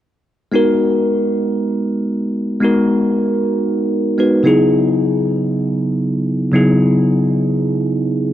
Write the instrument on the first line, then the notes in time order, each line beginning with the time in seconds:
tine electric piano
0.52 G#3 B3 D#4 F#4 A#4
2.60 G#3 B3 D#4 F#4
2.64 A#4
4.18 G#3 B3 D#4 F#4 B4
4.43 C#3 F#3 B3 D#4 E4
4.47 G#4
6.52 C#3 F#3 B3 D#4 E4 G#4